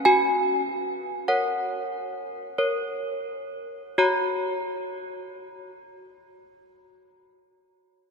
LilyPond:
\new Staff \with { instrumentName = "Handbells" } { \time 3/4 \key fis \major \tempo 4 = 43 << { gis''4 fis''4. r8 | <fis' cis'' ais''>2. | } \\ { fis'4 <ais' cis''>4 <ais' cis''>4 | r2. | } >> }